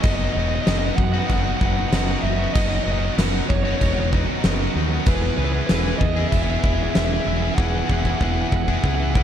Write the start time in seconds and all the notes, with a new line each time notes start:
0.02 F#1 F#3 B3 D#4 F#4 B4 D#5 F#5 D#6, kick, crash
0.10 D#5
0.16 D#5
0.25 D#5
0.33 E1 F#3 B3 D#4 D#5
0.38 F#4 D#5
0.48 D#4 F#4 D#5
0.53 B3 D#5
0.62 F#3 D#5
0.67 F#1 B3 D#4 F#4 D#5, snare, crash
0.79 D#4 F#4 D#5
0.83 B3 D#5
0.96 F#2 F#5, muted distorted electric guitar stroke, kick
1.04 F#5
1.13 B3 D#4 F#4 F#5
1.19 F#5
1.27 F#1 F#3 B3 D#4 F#5, kick, crash
1.31 F#4 F#5
1.42 D#4 F#4 F#5
1.47 B3 F#5
1.57 F#3 B3 F#5
1.61 F#1 D#4 F#4, kick
1.66 F#5
1.73 F#4 F#5
1.77 B3 D#4 F#5
1.88 F#1 F#3 B3 F#5
1.93 D#4 F#4 F#5, snare, crash
2.04 F#4 F#5
2.09 B3 D#4 F#5
2.19 F#1 F#3 E5 F#5
2.25 B3 D#4 F#4
2.39 B3 D#4 F#4
2.54 F#1 F#3 B3 D#4 F#4 D#5, kick, crash
2.61 D#5
2.68 D#5
2.75 D#5
2.84 F#1 F#3 B3 D#5
2.88 D#4 F#4 D#5
2.99 F#4 D#5
3.04 B3 D#4 D#5
3.17 F#1 F#3 B3 D#4 F#4, snare, crash
3.34 B3 D#4 F#4
3.49 F#1 C#5, muted distorted electric guitar stroke, kick
3.56 C#5
3.64 D#4 F#4 C#5
3.68 B3 C#5
3.78 E1 F#3 B3 C#5, kick, crash
3.82 D#4 F#4 C#5
3.94 F#4 C#5
3.98 B3 D#4 C#5
4.11 F#3 B3 D#4 F#4, kick
4.27 B3 D#4 F#4
4.43 F#1 F#3 B3 D#4 F#4, snare, crash
4.60 B3 D#4 F#4
4.74 D#2 F#3 B3 D#4 F#4
4.90 B3 D#4 F#4
5.06 E1 E3 B3 E4 G#4 B4, kick, crash
5.15 B4
5.22 B4
5.29 B4
5.37 C#2 E3 B3 E4 G#4 B4
5.45 B4
5.52 E4 G#4 B4
5.56 B3 B4
5.67 E1 E3 B3 B4, snare, crash
5.71 E4 G#4 B4
5.81 B4
5.86 B3 E4 G#4 B4
5.96 B4 D#5
6.01 E2, muted distorted electric guitar stroke, kick
6.15 B3 E4 G#4
6.28 E3 B3 E5, kick, crash
6.33 E1 E4 G#4 E5
6.43 G#4 E5
6.48 B3 E4 E5
6.59 E3 B3 E5
6.64 E1 E4 G#4 E5, kick
6.75 G#4 E5
6.80 B3 E4 E5
6.90 E3 E5
6.95 E1 B3 E4 G#4 E5, snare, crash
7.05 E5
7.10 B3 E4 G#4 E5
7.21 E5
7.25 E1 E3 B3 E4 G#4 E5
7.37 G#4 E5
7.42 B3 E4 E5
7.52 E5 F#5
7.56 E1 E3 B3 E4 G#4, kick
7.63 F#5
7.71 F#5
7.79 F#5
7.86 E3 F#5, kick
7.90 E1 B3 E4 G#4 F#5
8.01 G#4 F#5, kick
8.06 B3 E4 F#5
8.18 E1 E3 B3 F#5, kick
8.22 E4 G#4 F#5
8.32 G#4 F#5
8.37 B3 E4
8.41 F#5
8.49 F#5, kick
8.53 E1 F#5, muted distorted electric guitar stroke
8.64 G#4 F#5, kick
8.69 B3 E4 F#5
8.79 E3 F#5
8.84 C#2 B3 E4 G#4, kick
8.88 F#5
8.95 G#4 F#5
9.00 B3 E4 F#5
9.10 F#5
9.14 E3 B3 E4 G#4 F#5, kick